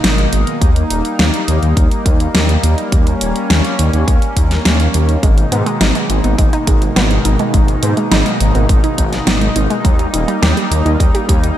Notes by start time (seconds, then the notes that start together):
Already playing: B2 D#3 G#3 A#3 D#4
0.04 G#1, snare, closed hi-hat
0.18 closed hi-hat
0.33 G#1, closed hi-hat
0.47 closed hi-hat
0.61 D#2 G3, kick, closed hi-hat
0.76 closed hi-hat
0.91 D#1, closed hi-hat
1.05 closed hi-hat
1.19 D#2, snare, closed hi-hat
1.34 closed hi-hat
1.48 D#2, closed hi-hat
1.62 D#2, closed hi-hat
1.77 D#2, kick, closed hi-hat
1.91 closed hi-hat
2.06 D#2, kick, closed hi-hat
2.20 closed hi-hat
2.35 D#2, snare, closed hi-hat
2.49 closed hi-hat
2.63 D#2, closed hi-hat
2.78 closed hi-hat
2.92 D#2 C#4, kick, closed hi-hat
3.07 closed hi-hat
3.21 D#1, closed hi-hat
3.36 closed hi-hat
3.50 D#2, snare, closed hi-hat
3.64 closed hi-hat
3.79 D#2, closed hi-hat
3.93 D#2, closed hi-hat
4.08 D#2, kick, closed hi-hat
4.22 closed hi-hat
4.36 D#2, kick, closed hi-hat
4.51 snare, closed hi-hat
4.65 D#2, snare, closed hi-hat
4.80 closed hi-hat
4.94 D#2, closed hi-hat
5.09 closed hi-hat
5.23 G#1 B2 D#3 G#3 D#4, kick, closed hi-hat
5.38 closed hi-hat
5.52 G#2 B3, closed hi-hat
5.66 G#3, closed hi-hat
5.81 G#1 D#4, snare, closed hi-hat
5.95 G#3, closed hi-hat
6.10 G#1, closed hi-hat
6.24 G#1 B3, closed hi-hat
6.38 G#1 G#3, kick, closed hi-hat
6.53 D#4, closed hi-hat
6.67 G#1 G#3, kick, closed hi-hat
6.82 closed hi-hat
6.96 G#1 B3, snare, closed hi-hat
7.11 G#3, closed hi-hat
7.25 G#1 D#4, closed hi-hat
7.39 G#3, closed hi-hat
7.54 G#1 G#3, kick, closed hi-hat
7.68 closed hi-hat
7.83 G#2 B3, closed hi-hat
7.97 G#3, closed hi-hat
8.11 G#1 D#4, snare, closed hi-hat
8.26 G#3, closed hi-hat
8.40 G#1, closed hi-hat
8.55 G#1 B3, closed hi-hat
8.69 G#1 G#3, kick, closed hi-hat
8.84 D#4, closed hi-hat
8.98 G#1 G#3, kick, closed hi-hat
9.13 snare, closed hi-hat
9.27 G#1 B3, snare, closed hi-hat
9.41 G#3, closed hi-hat
9.56 G#1 D#4, closed hi-hat
9.70 G#3, closed hi-hat
9.84 D#2 G3 A#3, kick, closed hi-hat
9.99 closed hi-hat
10.13 D#1 D#4, closed hi-hat
10.28 G3, closed hi-hat
10.42 D#2 G4, snare, closed hi-hat
10.57 G3, closed hi-hat
10.71 D#2, closed hi-hat
10.86 D#2 D#4, closed hi-hat
11.00 D#2 G3, kick, closed hi-hat
11.14 G4, closed hi-hat
11.29 D#2 G3, kick, closed hi-hat
11.44 closed hi-hat